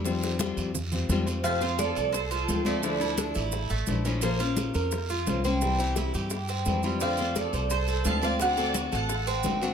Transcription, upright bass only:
\new Staff \with { instrumentName = "Upright bass" } { \clef bass \time 4/4 \key f \major \tempo 4 = 173 f,4. f,4. f,4~ | f,4. c,4. d,4~ | d,4. a,,4 a,,8 bes,,4~ | bes,,4. f,4. c,4~ |
c,4. g,4. f,4~ | f,4. c,4. d,4~ | d,4. a,,4. g,,4 | }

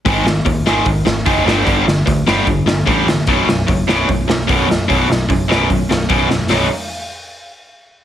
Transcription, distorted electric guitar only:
\new Staff \with { instrumentName = "Distorted electric guitar" } { \clef bass \time 4/4 \key gis \minor \tempo 4 = 149 <gis, dis gis>8 <gis, dis>8 <gis, dis>8 <gis, dis gis>8 <gis, dis>8 <gis, dis>8 <gis, dis gis>8 <g, d g>8 | <g, d g>8 <g, d>8 <g, d>8 <g, d g>8 <g, d>8 <g, d>8 <g, d g>8 <g, d>8 | <b,, fis, b,>8 <b,, fis,>8 <b,, fis,>8 <b,, fis, b,>8 <b,, fis,>8 <b,, fis,>8 <b,, fis, b,>8 <b,, fis,>8 | <b,, fis, b,>8 <b,, fis,>8 <b,, fis,>8 <b,, fis, b,>8 <b,, fis,>8 <b,, fis,>8 <b,, fis, b,>8 <b,, fis,>8 |
<b,, fis, b, fis dis'>8 r2. r8 | }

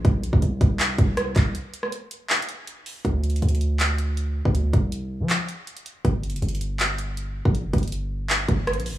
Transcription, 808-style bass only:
\new Staff \with { instrumentName = "808-style bass" } { \clef bass \time 4/4 \key g \dorian \tempo 4 = 160 c,8 bes,,16 c,16 c,8 c,4 c,4 c,8 | r1 | d,4 d,2~ d,8. d,16~ | d,8 c,4~ c,16 f8 r4. r16 |
g,,8. f,,16 g,,2~ g,,8. bes,,16~ | bes,,16 f,,16 g,,2 g,,8. bes,,16. g,,16. | }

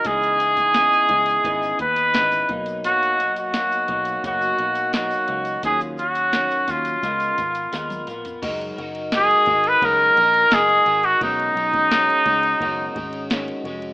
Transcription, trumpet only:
\new Staff \with { instrumentName = "Trumpet" } { \time 4/4 \key fis \major \tempo 4 = 86 gis'2~ gis'8 b'4 r8 | fis'8. fis'4~ fis'16 fis'4 fis'4 | gis'8 fis'4 eis'2 r8 | r4 gis'8. b'16 ais'4 gis'8. fis'16 |
dis'2. r4 | }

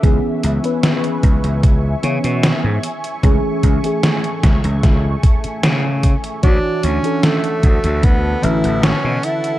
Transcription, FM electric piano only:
\new Staff \with { instrumentName = "FM electric piano" } { \time 4/4 \key d \lydian \tempo 4 = 75 <e b cis' gis'>8. <e b cis' b'>4.~ <e b cis' b'>16 <e b cis' cis''>4 r8 | <e a cis' gis'>16 r8 <e a cis' gis'>2.~ <e a cis' gis'>16 | <e d' fis' cis''>8. <e cis' d' a'>4.~ <e cis' d' a'>16 <d e cis' b'>4. | }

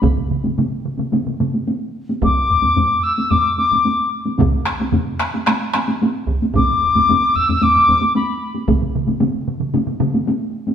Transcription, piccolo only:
\new Staff \with { instrumentName = "Piccolo" } { \time 4/4 \tempo 4 = 112 r1 | d'''4. e'''8 d'''8 d'''4 r8 | r1 | d'''4. e'''8 d'''4 b''8. r16 |
r1 | }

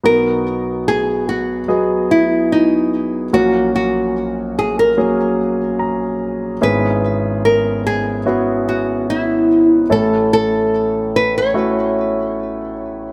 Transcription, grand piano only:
<<
  \new Staff \with { instrumentName = "Grand piano" } { \time 4/4 \key b \major \tempo 4 = 73 << { r1 | r2. ais''4 | r1 | r1 | } \\ { <fis b dis' fis'>2 <fis b gis' dis''>2 | <fis ais cis' fis'>2 <fis ais cis' gis'>2 | <b cis' e' gis'>2 <b cis' e' fis'>2 | <a cis' e' a'>2 <a cis' e' fis'>2 | } >> }
  \new Staff \with { instrumentName = "Grand piano" } { \clef bass \time 4/4 \key b \major <b,, b,>1 | <ais,, ais,>1 | <gis,, gis,>1 | <a,, a,>1 | }
>>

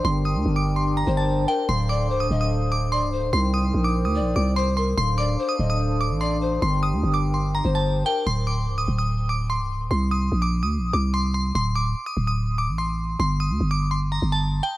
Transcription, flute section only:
\new Staff \with { instrumentName = "Flute section" } { \time 4/4 \key d \phrygian \tempo 4 = 146 << { <g' bes' g''>1 | <a' c'' f''>1 | <bes' c'' g''>1 | <a' c'' f''>1 |
<g' bes' g''>1 | r1 | r1 | r1 |
r1 | } \\ { d'1~ | d'1 | ees'1 | d'1~ |
d'1 | r1 | r1 | r1 |
r1 | } >> }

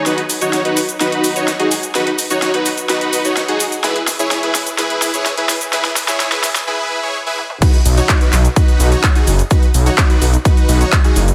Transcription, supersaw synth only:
\new Staff \with { instrumentName = "Supersaw synth" } { \time 4/4 \key b \major \tempo 4 = 127 <dis' fis' b'>16 r8 <dis' fis' cis''>8 <dis' fis' b'>16 r8 <dis' fis' b'>8. <dis' fis' cis''>16 r16 <dis' fis' gis'>16 r8 | <dis' fis' b'>16 r8 <dis' fis' cis''>8 <dis' fis' b'>16 r8 <dis' fis' b'>8. <dis' fis' cis''>16 r16 <dis' fis' gis'>16 r8 | <e' gis' b'>16 r8 <e' gis' cis''>8 <e' gis' b'>16 r8 <e' gis' b'>8. <e' gis' cis''>16 r16 <e' gis' b'>16 r8 | <e' gis' b'>16 r8 <e' gis' cis''>8 <e' gis' b'>16 r8 <e' gis' b'>8. <e' gis' cis''>16 r16 <e' gis' b'>16 r8 |
<dis' fis' b'>16 r8 <dis' fis' cis''>8 <dis' fis' b'>16 r8 <dis' fis' b'>8. <dis' fis' cis''>16 r16 <dis' fis' gis'>16 r8 | <dis' fis' b'>16 r8 <dis' fis' cis''>8 <dis' fis' b'>16 r8 <dis' fis' b'>8. <dis' fis' cis''>16 r16 <dis' fis' gis'>16 r8 | }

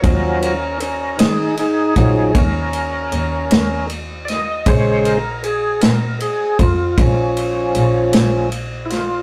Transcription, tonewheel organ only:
\new Staff \with { instrumentName = "Tonewheel organ" } { \time 12/8 \key bes \minor \tempo 4. = 52 <f ges des' bes'>8 <des' bes'>8 <des' bes'>8 <ees' aes'>8 <ees' aes'>8 <f ges des' ees' aes'>8 <des' bes'>2 r8 <d'' ees''>8 | <des aes c'' des''>8 bes'8 aes'8 bes'8 aes'8 f'8 <f des'>2 r8 <e' f'>8 | }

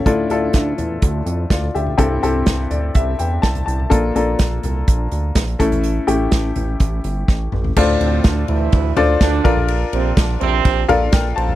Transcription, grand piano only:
<<
  \new Staff \with { instrumentName = "Grand piano" } { \time 4/4 \key d \minor \tempo 4 = 124 << { cis'8 r2 r8 <f' d''>8 <g' e''>8~ | <g' e''>8 r4 d''8 e''8 g''8 a''8 a''8 | r1 | r1 |
r1 | r2. <bes' g''>8 <c'' a''>8 | } \\ { <d' e' f' a'>8 <d' e' f' a'>2 r4. | <c' e' g' a'>8 <c' e' g' a'>2 r4. | <bes d' f' a'>8 <bes d' f' a'>2 r4 <a cis' e' a'>8~ | <a cis' e' a'>8 <a cis' e' g'>2 r4. |
<d' f' a' c'' d''>2 r8 <d' f' a' c'' d''>4 <d' f' a' bes' d''>8~ | <d' f' a' bes' d''>4. r4 <d' f' a' bes' f''>4. | } >> }
  \new Staff \with { instrumentName = "Grand piano" } { \clef bass \time 4/4 \key d \minor a,4. r2 r8 | g,4. r2 r8 | r1 | r1 |
a,4. r2 r8 | r1 | }
>>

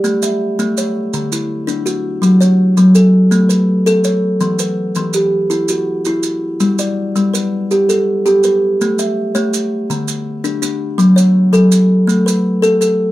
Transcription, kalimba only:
<<
  \new Staff \with { instrumentName = "Kalimba" } { \time 12/8 \key a \mixolydian \tempo 4. = 110 d''8 e''4. cis''4. e'4. fis'4~ | fis'8 cis''4. a'4. b'4. cis''4~ | cis''8 b'4. g'4. fis'4. r4 | r8 d''4. b'4. a'4. b'4~ |
b'8 e''4 cis''4. r2 d'4~ | d'8 cis''4 a'4. r8 b'4. a'4 | }
  \new Staff \with { instrumentName = "Kalimba" } { \time 12/8 \key a \mixolydian a4 r8 a4 r8 d4 r8 d'4 r8 | fis4 r8 fis4 r8 a4 r8 a'4 r8 | e4 r8 e4 r8 e'4 r8 e'4 r8 | g4 r8 g4 r8 g'4 r8 g'4 r8 |
a4 r8 a4 r8 d4 r8 d'4 r8 | fis4 r8 fis4 r8 a4 r8 a'4 r8 | }
>>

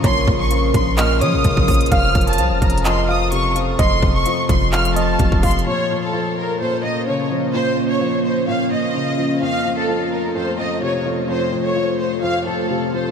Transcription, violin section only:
\new Staff \with { instrumentName = "Violin section" } { \time 4/4 \key bes \minor \tempo 4 = 128 c'''8. des'''8. c'''8 f'''8 ees'''4. | f'''8. a''8. bes''8 c'''8 ees'''8 des'''8 r8 | c'''8. des'''8. c'''8 f'''8 a''4 c'''8 | des''8. a'8. bes'8 c''8 ees''8 des''8 r8 |
c''8. des''8. c''8 f''8 ees''4. | f''8. a'8. bes'8 c''8 ees''8 des''8 r8 | c''8. des''8. c''8 f''8 a'4 c''8 | }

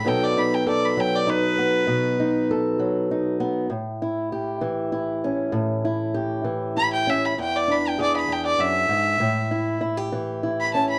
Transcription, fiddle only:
\new Staff \with { instrumentName = "Fiddle" } { \time 12/8 \key a \major \tempo 4. = 66 g''16 d''16 b''16 g''16 d''16 b''16 g''16 d''16 b'2 r2 | r1 r4 b''16 g''16 e''16 b''16 | g''16 d''16 b''16 g''16 d''16 b''16 g''16 d''16 e''2 r4 r16 b''16 a''16 b''16 | }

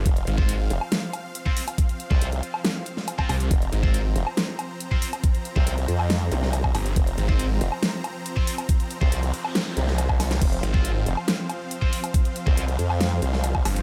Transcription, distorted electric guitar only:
\new Staff \with { instrumentName = "Distorted electric guitar" } { \time 4/4 \key f \minor \tempo 4 = 139 r8. <c' f' c''>16 r2 r16 <c' f' c''>16 r8 | r8. <c' f' c''>16 r2 r16 <c' f' c''>16 r8 | r8. <c' f' c''>16 r2 r16 <c' f' c''>16 r8 | r8. <c' f' c''>16 r2. |
r8. <c' f' c''>16 r2 r16 <c' f' c''>16 r8 | r8. <c' f' c''>16 r2. | r8. <c' f' c''>16 r2 r16 <c' f' c''>16 r8 | r8. <c' f' c''>16 r2. | }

